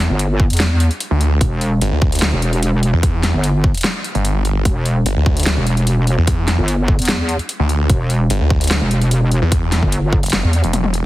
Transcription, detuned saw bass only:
0, 0, Header, 1, 2, 480
1, 0, Start_track
1, 0, Key_signature, 1, "minor"
1, 0, Tempo, 405405
1, 1668, Time_signature, 4, 2, 24, 8
1, 13089, End_track
2, 0, Start_track
2, 0, Title_t, "Detuned saw bass"
2, 0, Program_c, 0, 39
2, 1314, Note_on_c, 0, 38, 101
2, 1650, Note_off_c, 0, 38, 0
2, 2149, Note_on_c, 0, 31, 100
2, 2254, Note_off_c, 0, 31, 0
2, 2274, Note_on_c, 0, 38, 98
2, 2734, Note_off_c, 0, 38, 0
2, 3474, Note_on_c, 0, 40, 94
2, 3934, Note_off_c, 0, 40, 0
2, 4914, Note_on_c, 0, 31, 93
2, 5490, Note_off_c, 0, 31, 0
2, 5989, Note_on_c, 0, 31, 95
2, 6094, Note_off_c, 0, 31, 0
2, 6114, Note_on_c, 0, 38, 99
2, 6574, Note_off_c, 0, 38, 0
2, 7314, Note_on_c, 0, 40, 97
2, 7774, Note_off_c, 0, 40, 0
2, 8994, Note_on_c, 0, 38, 97
2, 9330, Note_off_c, 0, 38, 0
2, 9829, Note_on_c, 0, 31, 98
2, 9934, Note_off_c, 0, 31, 0
2, 9954, Note_on_c, 0, 38, 102
2, 10414, Note_off_c, 0, 38, 0
2, 11154, Note_on_c, 0, 40, 94
2, 11614, Note_off_c, 0, 40, 0
2, 12114, Note_on_c, 0, 30, 99
2, 12334, Note_off_c, 0, 30, 0
2, 12594, Note_on_c, 0, 28, 98
2, 13054, Note_off_c, 0, 28, 0
2, 13089, End_track
0, 0, End_of_file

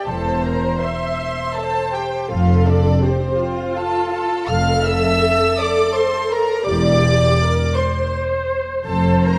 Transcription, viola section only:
0, 0, Header, 1, 2, 480
1, 0, Start_track
1, 0, Key_signature, -1, "major"
1, 0, Tempo, 743494
1, 54, Time_signature, 3, 2, 24, 8
1, 1493, Tempo, 726392
1, 5333, Tempo, 756620
1, 6133, End_track
2, 0, Start_track
2, 0, Title_t, "Viola section"
2, 0, Program_c, 0, 48
2, 50, Note_on_c, 0, 72, 63
2, 523, Note_off_c, 0, 72, 0
2, 530, Note_on_c, 0, 76, 64
2, 1009, Note_on_c, 0, 72, 64
2, 1010, Note_off_c, 0, 76, 0
2, 1491, Note_on_c, 0, 69, 71
2, 1492, Note_off_c, 0, 72, 0
2, 1959, Note_off_c, 0, 69, 0
2, 1966, Note_on_c, 0, 67, 61
2, 2201, Note_on_c, 0, 65, 75
2, 2209, Note_off_c, 0, 67, 0
2, 2930, Note_off_c, 0, 65, 0
2, 2938, Note_on_c, 0, 69, 91
2, 4350, Note_off_c, 0, 69, 0
2, 4377, Note_on_c, 0, 67, 67
2, 4857, Note_off_c, 0, 67, 0
2, 4865, Note_on_c, 0, 70, 64
2, 5086, Note_on_c, 0, 72, 75
2, 5099, Note_off_c, 0, 70, 0
2, 5801, Note_off_c, 0, 72, 0
2, 5810, Note_on_c, 0, 72, 86
2, 6133, Note_off_c, 0, 72, 0
2, 6133, End_track
0, 0, End_of_file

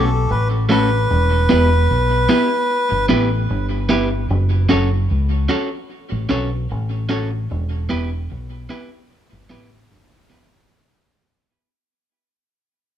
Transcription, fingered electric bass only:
0, 0, Header, 1, 2, 480
1, 0, Start_track
1, 0, Tempo, 801068
1, 653, Time_signature, 4, 2, 24, 8
1, 7772, End_track
2, 0, Start_track
2, 0, Title_t, "Fingered electric bass"
2, 0, Program_c, 0, 33
2, 0, Note_on_c, 0, 35, 84
2, 154, Note_off_c, 0, 35, 0
2, 183, Note_on_c, 0, 33, 90
2, 634, Note_off_c, 0, 33, 0
2, 662, Note_on_c, 0, 28, 91
2, 875, Note_off_c, 0, 28, 0
2, 903, Note_on_c, 0, 28, 96
2, 1115, Note_off_c, 0, 28, 0
2, 1142, Note_on_c, 0, 35, 81
2, 1355, Note_off_c, 0, 35, 0
2, 1746, Note_on_c, 0, 31, 76
2, 1846, Note_off_c, 0, 31, 0
2, 1861, Note_on_c, 0, 33, 94
2, 2074, Note_off_c, 0, 33, 0
2, 2099, Note_on_c, 0, 31, 87
2, 2552, Note_off_c, 0, 31, 0
2, 2580, Note_on_c, 0, 30, 101
2, 2793, Note_off_c, 0, 30, 0
2, 2820, Note_on_c, 0, 30, 99
2, 3033, Note_off_c, 0, 30, 0
2, 3061, Note_on_c, 0, 37, 99
2, 3274, Note_off_c, 0, 37, 0
2, 3666, Note_on_c, 0, 33, 91
2, 3765, Note_off_c, 0, 33, 0
2, 3781, Note_on_c, 0, 35, 91
2, 3994, Note_off_c, 0, 35, 0
2, 4022, Note_on_c, 0, 33, 99
2, 4473, Note_off_c, 0, 33, 0
2, 4501, Note_on_c, 0, 28, 108
2, 4713, Note_off_c, 0, 28, 0
2, 4740, Note_on_c, 0, 28, 91
2, 4953, Note_off_c, 0, 28, 0
2, 4981, Note_on_c, 0, 35, 94
2, 5194, Note_off_c, 0, 35, 0
2, 5587, Note_on_c, 0, 31, 81
2, 5686, Note_off_c, 0, 31, 0
2, 5700, Note_on_c, 0, 33, 85
2, 5913, Note_off_c, 0, 33, 0
2, 5940, Note_on_c, 0, 31, 93
2, 6391, Note_off_c, 0, 31, 0
2, 7772, End_track
0, 0, End_of_file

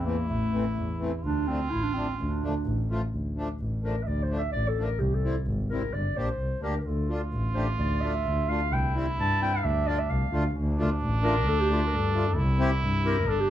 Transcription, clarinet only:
0, 0, Header, 1, 2, 480
1, 0, Start_track
1, 0, Key_signature, -1, "minor"
1, 0, Tempo, 469484
1, 293, Time_signature, 2, 2, 24, 8
1, 7970, Tempo, 455927
1, 13976, End_track
2, 0, Start_track
2, 0, Title_t, "Clarinet"
2, 0, Program_c, 0, 71
2, 56, Note_on_c, 0, 58, 81
2, 277, Note_off_c, 0, 58, 0
2, 283, Note_on_c, 0, 57, 85
2, 975, Note_off_c, 0, 57, 0
2, 1277, Note_on_c, 0, 62, 103
2, 1507, Note_on_c, 0, 60, 93
2, 1523, Note_off_c, 0, 62, 0
2, 1740, Note_on_c, 0, 64, 97
2, 1756, Note_off_c, 0, 60, 0
2, 1864, Note_on_c, 0, 62, 91
2, 1879, Note_off_c, 0, 64, 0
2, 1975, Note_on_c, 0, 60, 87
2, 1991, Note_off_c, 0, 62, 0
2, 2210, Note_off_c, 0, 60, 0
2, 2216, Note_on_c, 0, 62, 79
2, 2905, Note_off_c, 0, 62, 0
2, 3912, Note_on_c, 0, 70, 81
2, 4117, Note_on_c, 0, 76, 67
2, 4133, Note_off_c, 0, 70, 0
2, 4157, Note_on_c, 0, 74, 84
2, 4172, Note_off_c, 0, 76, 0
2, 4320, Note_on_c, 0, 72, 94
2, 4336, Note_off_c, 0, 74, 0
2, 4468, Note_off_c, 0, 72, 0
2, 4475, Note_on_c, 0, 76, 95
2, 4612, Note_off_c, 0, 76, 0
2, 4618, Note_on_c, 0, 74, 97
2, 4780, Note_on_c, 0, 69, 87
2, 4796, Note_off_c, 0, 74, 0
2, 4937, Note_on_c, 0, 70, 85
2, 4953, Note_off_c, 0, 69, 0
2, 5099, Note_on_c, 0, 67, 78
2, 5115, Note_off_c, 0, 70, 0
2, 5259, Note_on_c, 0, 69, 76
2, 5275, Note_off_c, 0, 67, 0
2, 5505, Note_off_c, 0, 69, 0
2, 5824, Note_on_c, 0, 70, 87
2, 6062, Note_on_c, 0, 74, 88
2, 6077, Note_off_c, 0, 70, 0
2, 6303, Note_on_c, 0, 72, 95
2, 6319, Note_off_c, 0, 74, 0
2, 6770, Note_off_c, 0, 72, 0
2, 6776, Note_on_c, 0, 70, 84
2, 6945, Note_off_c, 0, 70, 0
2, 6957, Note_on_c, 0, 70, 56
2, 7012, Note_on_c, 0, 69, 68
2, 7027, Note_off_c, 0, 70, 0
2, 7253, Note_off_c, 0, 69, 0
2, 7710, Note_on_c, 0, 72, 77
2, 7821, Note_off_c, 0, 72, 0
2, 7960, Note_on_c, 0, 74, 85
2, 8192, Note_on_c, 0, 76, 99
2, 8208, Note_off_c, 0, 74, 0
2, 8699, Note_on_c, 0, 77, 104
2, 8715, Note_off_c, 0, 76, 0
2, 8948, Note_on_c, 0, 79, 92
2, 8964, Note_off_c, 0, 77, 0
2, 9187, Note_off_c, 0, 79, 0
2, 9448, Note_on_c, 0, 81, 112
2, 9662, Note_off_c, 0, 81, 0
2, 9678, Note_on_c, 0, 79, 106
2, 9799, Note_on_c, 0, 77, 96
2, 9814, Note_off_c, 0, 79, 0
2, 9910, Note_on_c, 0, 76, 108
2, 9925, Note_off_c, 0, 77, 0
2, 10150, Note_on_c, 0, 74, 97
2, 10166, Note_off_c, 0, 76, 0
2, 10274, Note_on_c, 0, 76, 93
2, 10290, Note_off_c, 0, 74, 0
2, 10395, Note_on_c, 0, 77, 84
2, 10411, Note_off_c, 0, 76, 0
2, 10874, Note_off_c, 0, 77, 0
2, 11589, Note_on_c, 0, 70, 104
2, 11813, Note_off_c, 0, 70, 0
2, 11846, Note_on_c, 0, 69, 103
2, 11976, Note_on_c, 0, 67, 106
2, 11991, Note_off_c, 0, 69, 0
2, 12082, Note_off_c, 0, 67, 0
2, 12100, Note_on_c, 0, 65, 88
2, 12255, Note_on_c, 0, 70, 73
2, 12271, Note_off_c, 0, 65, 0
2, 12343, Note_on_c, 0, 69, 100
2, 12359, Note_off_c, 0, 70, 0
2, 12802, Note_off_c, 0, 69, 0
2, 13515, Note_on_c, 0, 70, 110
2, 13758, Note_on_c, 0, 69, 110
2, 13774, Note_off_c, 0, 70, 0
2, 13873, Note_on_c, 0, 67, 100
2, 13889, Note_off_c, 0, 69, 0
2, 13976, Note_off_c, 0, 67, 0
2, 13976, End_track
0, 0, End_of_file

